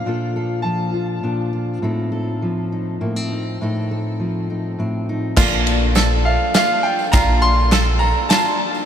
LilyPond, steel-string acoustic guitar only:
\new Staff \with { instrumentName = "Steel-string acoustic guitar" } { \time 3/4 \key bes \major \tempo 4 = 102 << { <d' f' a'>8 a'4 f'8 d'8 f'8 | <c' ees' a'>8 a'4 ees'8 bes16 c'16 ees'8 | <c' ees' a'>8 a'4 ees'8 c'8 ees'8 | r2. |
r2. | } \\ { <bes, f>4 f4 bes,4 | a,4 f4 a,4 | a,4 f4 a,4 | r2. |
r2. | } >> }